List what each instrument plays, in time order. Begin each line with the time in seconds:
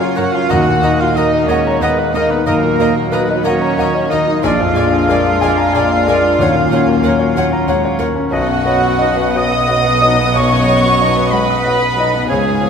Already playing: grand piano F#2 C#3 C#4 F#4 A#4 F#5 A#5, viola section F#3, french horn section A#3 C#4
0.00 cello section F4, grand piano C#5, flute section F5, violin section F5, oboe F5
0.16 double bass section F#2, bassoon A#3, cello section F#4, grand piano A#4, violin section C#5 F#5 A#5, clarinet C#5, oboe F#5, flute section F#5
0.32 grand piano C#4, cello section F4, oboe F5, flute section F5, violin section F5
0.48 double bass section D#2, bassoon A#3, viola section A#3, french horn section D#4, cello section F#4, clarinet D#5, violin section D#5 F#5 A#5, oboe F#5, flute section F#5
0.52 grand piano D#2
0.68 grand piano A#2
0.82 double bass section D#2, bassoon A#3, grand piano D#4, violin section D#5 A#5, clarinet D#5
0.98 cello section F4, violin section F5, flute section F5, oboe F5
1.04 grand piano F#4
1.14 double bass section D#2, bassoon A#3, cello section D#4, flute section D#5, violin section D#5 A#5, oboe D#5, clarinet D#5
1.18 grand piano A#4
1.34 grand piano D#5
1.47 double bass section D#2, viola section G#3, bassoon A#3, cello section C#4, violin section C#5 D#5 A#5, flute section C#5, oboe C#5, clarinet D#5
1.51 grand piano F#5
1.67 grand piano A#5
1.80 double bass section D#2, bassoon A#3, cello section B3, violin section B4 D#5 A#5, flute section B4, oboe B4, clarinet D#5, grand piano F#5
1.99 grand piano D#5
2.14 double bass section D#2, bassoon A#3, cello section D#4, grand piano A#4, violin section D#5 A#5, flute section D#5, oboe D#5, clarinet D#5
2.29 cello section B3, grand piano D#4, violin section B4, oboe B4, flute section B4
2.46 double bass section D#2, grand piano D#2, viola section F#3, bassoon A#3, cello section A#3, violin section A#4 D#5 A#5, flute section A#4, oboe A#4, clarinet D#5
2.65 grand piano A#2
2.79 double bass section D#2, bassoon A#3, grand piano D#4, violin section D#5 A#5, clarinet D#5
2.97 grand piano F#4
3.12 double bass section D#2, bassoon A#3, cello section B3, grand piano A#4, oboe B4, flute section B4, violin section B4 D#5 A#5, clarinet D#5
3.31 grand piano D#5
3.44 double bass section D#2, bassoon A#3, cello section C#4, oboe C#5, flute section C#5, violin section C#5 D#5 A#5, clarinet D#5, grand piano F#5
3.62 grand piano A#5
3.78 double bass section D#2, bassoon A#3, violin section D#5 A#5, clarinet D#5, grand piano F#5
3.95 grand piano D#5
4.10 double bass section D#2, bassoon A#3, cello section D#4, grand piano A#4, flute section D#5, oboe D#5, violin section D#5 A#5, clarinet D#5
4.27 grand piano D#4
4.43 grand piano A#1, double bass section A#1, viola section F3, bassoon G#3, french horn section G#3 D4, cello section F4, violin section D5 F5 G#5, clarinet D5, flute section F5, oboe F5
4.60 grand piano F2
4.75 double bass section A#1, bassoon G#3, viola section A#3, grand piano D4, violin section D5 G#5
4.79 clarinet D5
4.93 grand piano G#4
5.08 double bass section A#1, bassoon G#3, viola section G#3, grand piano A#4, violin section D5 G#5
5.12 clarinet D5
5.23 grand piano D5
5.41 double bass section A#1, viola section F3, bassoon G#3, violin section D5 G#5, clarinet D5, grand piano G#5
5.57 grand piano A#5
5.73 double bass section A#1, bassoon G#3, viola section A#3, violin section D5 G#5, grand piano G#5
5.78 clarinet D5
5.90 grand piano D5
6.06 double bass section A#1, bassoon G#3, viola section G#3, grand piano A#4, violin section D5 G#5
6.10 clarinet D5
6.22 grand piano D4
6.38 double bass section D#2, grand piano D#2, french horn section F#3 C#4, bassoon F#3, viola section A#3, violin section C#5 F#5, clarinet C#5
6.54 grand piano A#2
6.72 double bass section D#2, bassoon F#3, grand piano C#4, violin section C#5 F#5, clarinet C#5
6.88 grand piano F#4
7.03 double bass section D#2, bassoon F#3, grand piano A#4, violin section C#5 F#5
7.08 clarinet C#5
7.19 grand piano C#5
7.36 double bass section D#2, bassoon F#3, viola section C#4, violin section C#5 F#5, clarinet C#5, grand piano F#5
7.53 grand piano A#5
7.68 double bass section D#2, bassoon F#3, viola section G#3, violin section C#5 F#5, clarinet C#5, grand piano F#5
7.85 grand piano C#5
7.99 double bass section D#2, bassoon F#3, viola section A#3, grand piano A#4, violin section C#5 F#5, clarinet C#5
8.16 grand piano C#4
8.31 double bass section B1, grand piano B1, bassoon F#3, viola section B3, cello section F#4, clarinet D#5, violin section D#5 F#5, flute section F#5, oboe F#5
8.48 grand piano F#2
8.65 bassoon F#3, grand piano B3, viola section C#4, clarinet D#5
8.82 grand piano F#4
8.98 french horn section F#3 D#4, bassoon F#3, viola section B3, grand piano D#5, clarinet D#5
9.17 grand piano B4
9.34 bassoon F#3, cello section D#5, clarinet D#5, grand piano F#5, flute section D#6, oboe D#6
9.38 violin section D#6
9.51 grand piano D#6
9.68 bassoon F#3, grand piano F#5
9.72 clarinet D#5
9.84 grand piano B4
10.02 bassoon F#3, french horn section D#4, grand piano D#5, clarinet D#5
10.07 french horn section F#3
10.20 grand piano B3
10.35 grand piano B1, bassoon F#3, cello section C#5, clarinet D#5, violin section C#6, oboe C#6, flute section C#6
10.52 grand piano F#2
10.68 bassoon F#3, grand piano B3, clarinet D#5
10.85 grand piano F#4
11.00 bassoon F#3, french horn section F#3 D#4, clarinet D#5, grand piano D#5
11.17 grand piano B4
11.31 bassoon F#3, viola section G#3, cello section B4, clarinet D#5, grand piano F#5, oboe B5, violin section B5, flute section B5
11.50 grand piano D#6
11.64 bassoon F#3, viola section F#3, clarinet D#5, grand piano F#5
11.82 grand piano B4
11.97 bassoon F#3, french horn section F#3 D#4, viola section D#4, clarinet D#5, grand piano D#5
12.15 grand piano B3
12.28 double bass section C#2, grand piano C#2, bassoon F3, viola section C#4, cello section G#4, clarinet C#5, violin section C#5 F5 G#5, oboe G#5, flute section G#5
12.49 grand piano G#2
12.61 bassoon F3, grand piano G#3, viola section B3, clarinet C#5